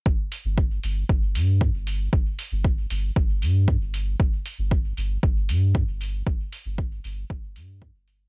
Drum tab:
HH |-o-o-o-o|-o-o-o-o|-o-o-o-o|-o-o-o-o|
BD |o-o-o-o-|o-o-o-o-|o-o-o-o-|o-o-o-o-|